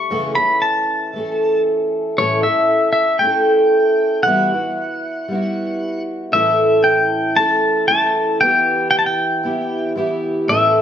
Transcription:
Already playing: twelve-string acoustic guitar G3 A3 D4 A4, pedal steel guitar C#6
0.10 twelve-string acoustic guitar F#2 C#3 E3 A3 C#4 A4
0.35 twelve-string acoustic guitar A3 C#4 A4, pedal steel guitar B5
0.39 twelve-string acoustic guitar E3
0.62 pedal steel guitar A5
1.13 twelve-string acoustic guitar E3 A3
1.18 twelve-string acoustic guitar C#4 A4
2.18 twelve-string acoustic guitar A2 E3 A3 C#4 E4 A4, pedal steel guitar C#5
2.43 twelve-string acoustic guitar A3 C#4 E4 A4, pedal steel guitar E5
2.93 pedal steel guitar E5
3.19 twelve-string acoustic guitar A3 C#4, pedal steel guitar G5
3.25 twelve-string acoustic guitar E4 A4
4.23 twelve-string acoustic guitar E3 G3 B3, pedal steel guitar F#5
4.27 twelve-string acoustic guitar E4 F#4
4.52 twelve-string acoustic guitar B3 E4 F#4
5.28 twelve-string acoustic guitar G3 B3
5.32 twelve-string acoustic guitar E4 F#4
6.32 twelve-string acoustic guitar A2 E3 A3 C#4 E4, pedal steel guitar E5
6.36 twelve-string acoustic guitar A4
6.84 pedal steel guitar G5
7.36 twelve-string acoustic guitar A3 C#4 E4 A4, pedal steel guitar A5
7.88 twelve-string acoustic guitar A3 C#4 E4 A4, pedal steel guitar A5
8.40 twelve-string acoustic guitar E3 B3 E4, pedal steel guitar G5
8.45 twelve-string acoustic guitar G4
8.91 pedal steel guitar G5
8.99 pedal steel guitar A5
9.06 pedal steel guitar G5
9.43 twelve-string acoustic guitar E3 B3 E4 G4
9.95 twelve-string acoustic guitar E3 B3 E4 G4
10.48 twelve-string acoustic guitar A2 E3 A3 C#4 E4 A4, pedal steel guitar E5

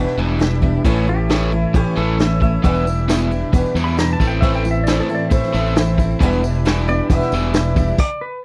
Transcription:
Already playing: overdriven electric guitar E2 B2, twelve-string acoustic guitar E2 B2 E3 G3 D4 E4, tonewheel organ D4 E4 G4 B4
0.07 snare
0.17 fingered electric bass E1, overdriven electric guitar E2 B2 E3, twelve-string acoustic guitar E3 G3 D4 E4
0.39 overdriven electric guitar E2 B2, twelve-string acoustic guitar E3 G3 D4 E4, snare, closed hi-hat
0.62 overdriven electric guitar E2 B2, twelve-string acoustic guitar E3 G3 D4 E4, kick
0.84 fingered electric bass A1, overdriven electric guitar A2 E3 A3, twelve-string acoustic guitar A2 E3 A3 C#4 E4, tonewheel organ C#4 E4 A4 C#5, kick, closed hi-hat
1.07 overdriven electric guitar A2 E3, twelve-string acoustic guitar A3 C#4 E4, pedal steel guitar G4
1.29 overdriven electric guitar A2 E3 A3, twelve-string acoustic guitar E3 A3 C#4 E4, snare, closed hi-hat
1.52 overdriven electric guitar A2 E3, twelve-string acoustic guitar A3 C#4 E4, pedal steel guitar E4
1.74 fingered electric bass A1, overdriven electric guitar A2 E3, twelve-string acoustic guitar A2 E3 A3 C#4 E4, pedal steel guitar G4, kick, closed hi-hat
1.96 fingered electric bass A1, overdriven electric guitar A2 E3 A3, twelve-string acoustic guitar A3 C#4 E4, pedal steel guitar A4
2.18 overdriven electric guitar A2 E3, twelve-string acoustic guitar E3 A3 C#4 E4, pedal steel guitar E5, snare, closed hi-hat
2.41 overdriven electric guitar A2 E3, twelve-string acoustic guitar A3 C#4 E4, pedal steel guitar E5, kick
2.63 fingered electric bass E1, overdriven electric guitar E2 B2 E3, twelve-string acoustic guitar E2 B2 E3 G3 D4 E4, tonewheel organ D4 E4 G4 B4, pedal steel guitar E5, kick, closed hi-hat
2.76 tambourine
2.85 overdriven electric guitar E2 B2, twelve-string acoustic guitar E3 G3 D4 E4, tambourine
2.99 tambourine
3.08 overdriven electric guitar E2 B2 E3, twelve-string acoustic guitar E3 G3 D4 E4, snare, closed hi-hat, tambourine
3.31 overdriven electric guitar E2 B2, twelve-string acoustic guitar E3 G3 D4 E4, tambourine
3.53 fingered electric bass E1, overdriven electric guitar E2 B2, twelve-string acoustic guitar E2 B2 E3 G3 D4 E4, kick, closed hi-hat, tambourine
3.66 tambourine
3.75 fingered electric bass E2, overdriven electric guitar E2 B2 E3, twelve-string acoustic guitar E3 G3 D4 E4, tambourine
3.84 pedal steel guitar B5, tambourine
3.97 overdriven electric guitar E2 B2, twelve-string acoustic guitar E3 G3 D4 E4, pedal steel guitar A#5, snare, closed hi-hat, tambourine
4.13 pedal steel guitar A5
4.20 fingered electric bass A1, overdriven electric guitar A2 E3 A3, twelve-string acoustic guitar A3 C4 E4, tonewheel organ C4 E4 A4 C5, kick, tambourine
4.27 pedal steel guitar G5
4.41 overdriven electric guitar A2 E3 A3, twelve-string acoustic guitar A2 E3 A3 C4 E4, pedal steel guitar E5, kick, closed hi-hat
4.54 pedal steel guitar G5, tambourine
4.64 overdriven electric guitar A2 E3, twelve-string acoustic guitar A3 C4 E4, tambourine
4.71 pedal steel guitar E5
4.84 overdriven electric guitar A2 E3, twelve-string acoustic guitar E3 A3, pedal steel guitar D5, closed hi-hat, tambourine
4.88 overdriven electric guitar A3, twelve-string acoustic guitar C4 E4, snare
5.00 pedal steel guitar A4
5.09 overdriven electric guitar A2 E3, twelve-string acoustic guitar A3 C4 E4, tambourine
5.15 pedal steel guitar D5
5.29 fingered electric bass A1, twelve-string acoustic guitar A2 E3 A3 C4 E4, overdriven electric guitar A2 E3, pedal steel guitar E5, kick, closed hi-hat, tambourine
5.43 snare, tambourine
5.53 fingered electric bass A1, overdriven electric guitar A2 E3 A3, twelve-string acoustic guitar A3 C4 E4, tambourine
5.66 tambourine
5.75 overdriven electric guitar A2 E3, twelve-string acoustic guitar E3 A3 C4 E4, snare, closed hi-hat, tambourine
5.98 overdriven electric guitar A2 E3, twelve-string acoustic guitar A3 C4 E4, kick, tambourine
6.11 tambourine
6.20 fingered electric bass E1, overdriven electric guitar E2 B2 E3, twelve-string acoustic guitar E2 B2 E3 G3 D4 E4, tonewheel organ D4 E4 G4 B4, kick, closed hi-hat
6.33 tambourine
6.43 overdriven electric guitar E2 B2, twelve-string acoustic guitar E3 G3 D4 E4, tambourine
6.55 tambourine
6.65 overdriven electric guitar E2 B2 E3, twelve-string acoustic guitar E3 G3 D4 E4, snare, closed hi-hat, tambourine
6.77 tambourine
6.88 overdriven electric guitar E2 B2, twelve-string acoustic guitar E3 G3 D4 E4, pedal steel guitar D5, tambourine
7.10 fingered electric bass E1, twelve-string acoustic guitar E2 B2 E3 G3 D4 E4, overdriven electric guitar E2 B2, pedal steel guitar E5, kick, closed hi-hat, tambourine
7.21 snare, tambourine
7.32 fingered electric bass E1, overdriven electric guitar E2 B2 E3, twelve-string acoustic guitar G3 D4 E4, tambourine
7.53 overdriven electric guitar E2 B2, twelve-string acoustic guitar E3 G3 D4, snare, closed hi-hat, tambourine
7.57 twelve-string acoustic guitar E4
7.76 overdriven electric guitar E2 B2, twelve-string acoustic guitar E3 G3 D4 E4, kick, tambourine
7.88 tambourine
7.98 pedal steel guitar D5, kick, crash
8.21 pedal steel guitar B4

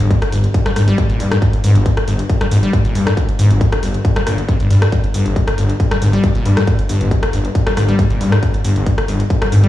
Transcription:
0.00 acid bass G1, detuned saw bass G1, closed hi-hat
0.11 kick, closed hi-hat
0.22 cross-stick, closed hi-hat
0.32 detuned saw bass G1, acid bass G2, open hi-hat
0.44 closed hi-hat
0.54 kick, closed hi-hat
0.66 acid bass G3, cross-stick, closed hi-hat
0.76 detuned saw bass G1, acid bass G#2, cross-stick, open hi-hat
0.88 acid bass G3, closed hi-hat
0.98 acid bass G2, kick, closed hi-hat
1.10 acid bass A#2, closed hi-hat
1.20 acid bass G2, detuned saw bass G2, open hi-hat
1.31 acid bass G#2, cross-stick, closed hi-hat
1.42 acid bass G2, kick, closed hi-hat
1.53 closed hi-hat
1.64 detuned saw bass G1, acid bass G#2, open hi-hat
1.75 detuned saw bass G1, acid bass G1, closed hi-hat
1.86 kick, closed hi-hat
1.97 cross-stick, closed hi-hat
2.08 detuned saw bass G1, acid bass G2, open hi-hat
2.19 closed hi-hat
2.29 kick, closed hi-hat
2.41 acid bass G3, cross-stick, closed hi-hat
2.51 detuned saw bass G1, acid bass G#2, open hi-hat
2.63 acid bass G3, closed hi-hat
2.73 acid bass G2, kick, closed hi-hat
2.85 acid bass A#2, closed hi-hat
2.95 detuned saw bass G2, acid bass G2, open hi-hat
3.07 acid bass G#2, cross-stick, closed hi-hat
3.17 acid bass G2, kick, closed hi-hat
3.29 closed hi-hat
3.39 detuned saw bass G1, acid bass G#2, open hi-hat
3.50 detuned saw bass G1, acid bass G1, closed hi-hat
3.61 kick, closed hi-hat
3.72 cross-stick, closed hi-hat
3.83 detuned saw bass G1, acid bass G2, open hi-hat
3.94 closed hi-hat
4.05 kick, closed hi-hat
4.16 acid bass G3, cross-stick, closed hi-hat
4.27 detuned saw bass G1, acid bass A#2, cross-stick, open hi-hat
4.38 acid bass G2, closed hi-hat
4.48 acid bass C3, kick, closed hi-hat
4.60 acid bass G2, closed hi-hat
4.70 acid bass G2, detuned saw bass G2, open hi-hat
4.82 acid bass G2, cross-stick, closed hi-hat
4.92 acid bass G2, kick, closed hi-hat
5.04 closed hi-hat
5.14 detuned saw bass G1, acid bass G2, open hi-hat
5.26 acid bass G1, detuned saw bass G1, closed hi-hat
5.36 kick, closed hi-hat
5.48 cross-stick, closed hi-hat
5.58 detuned saw bass G1, acid bass G2, open hi-hat
5.69 closed hi-hat
5.80 kick, closed hi-hat
5.91 acid bass G3, cross-stick, closed hi-hat
6.02 detuned saw bass G1, acid bass G#2, open hi-hat
6.13 acid bass G3, closed hi-hat
6.24 acid bass G2, kick, closed hi-hat
6.35 acid bass A#2, closed hi-hat
6.46 acid bass G2, detuned saw bass G2, open hi-hat
6.57 acid bass G#2, cross-stick, closed hi-hat
6.67 acid bass G2, kick, closed hi-hat
6.79 closed hi-hat
6.89 detuned saw bass G1, acid bass G2, open hi-hat
7.01 detuned saw bass G1, acid bass G1, closed hi-hat
7.11 kick, closed hi-hat
7.23 cross-stick, closed hi-hat
7.33 detuned saw bass G1, acid bass G2, open hi-hat
7.45 closed hi-hat
7.55 kick, closed hi-hat
7.67 acid bass G3, cross-stick, closed hi-hat
7.77 detuned saw bass G1, acid bass G#2, cross-stick, open hi-hat
7.88 acid bass G3, closed hi-hat
7.99 acid bass G2, kick, closed hi-hat
8.10 acid bass A#2, closed hi-hat
8.21 acid bass G2, detuned saw bass G2, open hi-hat
8.32 acid bass G#2, cross-stick, closed hi-hat
8.43 kick, closed hi-hat
8.54 closed hi-hat
8.64 detuned saw bass G1, acid bass G2, open hi-hat
8.76 detuned saw bass G1, acid bass G1, closed hi-hat
8.86 kick, closed hi-hat
8.98 cross-stick, closed hi-hat
9.08 detuned saw bass G1, acid bass G2, open hi-hat
9.20 closed hi-hat
9.30 kick, closed hi-hat
9.42 acid bass G3, cross-stick, closed hi-hat
9.52 detuned saw bass G1, acid bass G#2, open hi-hat
9.64 acid bass G3, closed hi-hat

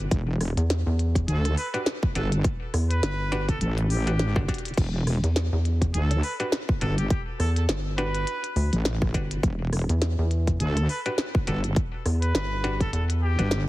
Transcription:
0.11 wobble bass E1, kick, closed hi-hat
0.41 cross-stick, open hi-hat
0.57 analog synth bass E2, closed hi-hat
0.70 snare, closed hi-hat
0.86 analog synth bass E2
0.99 closed hi-hat
1.15 kick, closed hi-hat
1.28 wobble bass D2, trumpet A4, closed hi-hat
1.45 cross-stick, closed hi-hat
1.57 trumpet B4, open hi-hat
1.74 clav D4 F#4 G4 B4, trumpet B4, closed hi-hat
1.86 snare
2.03 kick
2.15 wobble bass G1, clav D4 F#4 G4 B4, trumpet A4, closed hi-hat
2.32 closed hi-hat
2.44 kick, closed hi-hat
2.74 analog synth bass E2, cross-stick, open hi-hat
2.90 trumpet B4, closed hi-hat
3.03 analog synth bass G1, snare, closed hi-hat
3.32 clav D4 F#4 G4 B4, snare, closed hi-hat
3.49 trumpet A4, kick, closed hi-hat
3.60 wobble bass A1, trumpet A4, closed hi-hat
3.78 closed hi-hat
3.90 trumpet G4, open hi-hat
4.07 clav D4 F#4 G4 B4, closed hi-hat
4.19 wobble bass G#1, snare
4.36 clav D4 F#4 G4 D5, kick, cross-stick
4.48 clav D4 F#4 G4 D5, kick, closed hi-hat
4.54 closed hi-hat
4.58 closed hi-hat
4.65 closed hi-hat
4.68 closed hi-hat
4.74 wobble bass E1, kick, closed hi-hat
4.78 closed hi-hat, crash
5.07 cross-stick, open hi-hat
5.24 analog synth bass E2, closed hi-hat
5.36 snare, closed hi-hat
5.53 analog synth bass E2
5.65 closed hi-hat
5.82 kick, closed hi-hat
5.94 wobble bass D2, trumpet A4, closed hi-hat
6.11 cross-stick, closed hi-hat
6.23 trumpet B4, open hi-hat
6.40 clav D4 F#4 G4 B4, trumpet B4, closed hi-hat
6.52 snare
6.69 kick
6.81 wobble bass G1, clav D4 F#4 G4 B4, trumpet A4, closed hi-hat
6.98 trumpet G4, closed hi-hat
7.10 trumpet G4, kick, closed hi-hat
7.39 analog synth bass E2, trumpet A4, cross-stick, open hi-hat
7.56 trumpet A4, closed hi-hat
7.69 analog synth bass G1, snare, closed hi-hat
7.98 clav D4 F#4 G4 B4, trumpet B4, snare, closed hi-hat
8.15 closed hi-hat
8.27 closed hi-hat
8.44 closed hi-hat
8.56 analog synth bass D2, open hi-hat
8.73 wobble bass A1, closed hi-hat
8.85 snare
9.02 kick, cross-stick
9.14 analog synth bass G1, clav D4 F#4 G4 B4, kick, closed hi-hat
9.31 closed hi-hat
9.43 wobble bass E1, kick, closed hi-hat
9.73 cross-stick, open hi-hat
9.89 analog synth bass E2, closed hi-hat
10.02 snare, closed hi-hat
10.19 analog synth bass E2
10.31 closed hi-hat
10.47 kick, closed hi-hat
10.60 wobble bass D2, trumpet A4, closed hi-hat
10.77 cross-stick, closed hi-hat
10.89 trumpet B4, open hi-hat
11.06 clav D4 F#4 G4 B4, trumpet B4, closed hi-hat
11.18 snare
11.35 kick
11.47 wobble bass G1, clav D4 F#4 G4 B4, trumpet A4, closed hi-hat
11.64 closed hi-hat
11.76 kick, closed hi-hat
12.06 analog synth bass E2, cross-stick, open hi-hat
12.22 trumpet B4, closed hi-hat
12.35 analog synth bass G1, snare, closed hi-hat
12.64 clav D4 F#4 G4 B4, snare, closed hi-hat
12.80 trumpet A4, kick, closed hi-hat
12.93 analog synth bass E2, trumpet A4, closed hi-hat
13.10 closed hi-hat
13.22 trumpet G4
13.39 wobble bass G1, clav D4 F#4 G4 B4, closed hi-hat
13.51 snare

